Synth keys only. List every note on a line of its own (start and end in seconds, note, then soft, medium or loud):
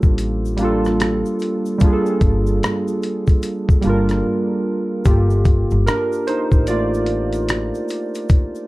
0.00 0.10 G3 medium
0.00 0.11 A#3 medium
0.00 0.12 D4 medium
0.00 0.13 F4 medium
0.00 5.05 G4 medium
0.00 0.17 A4 medium
0.57 1.74 G3 medium
0.57 1.75 A#3 medium
0.57 1.76 D4 medium
0.63 1.77 F4 medium
0.63 1.78 A4 medium
1.78 3.35 G3 medium
1.78 3.36 A#3 medium
1.78 3.37 D4 medium
1.84 3.38 F4 medium
1.84 1.92 G#4 medium
1.93 3.42 A4 medium
3.81 4.99 G3 medium
3.81 5.00 A#3 medium
3.81 5.01 D4 medium
3.87 5.02 F4 medium
3.87 5.03 A#4 medium
5.05 5.84 A#3 medium
5.05 6.68 F4 medium
5.05 5.89 G4 medium
5.05 8.26 A4 medium
5.86 6.25 D4 medium
5.86 6.24 A#4 medium
6.27 6.66 D#4 medium
6.27 6.69 C5 medium
6.68 7.05 A3 soft
6.68 7.05 A#3 soft
6.68 7.86 F4 medium
6.68 7.85 D5 medium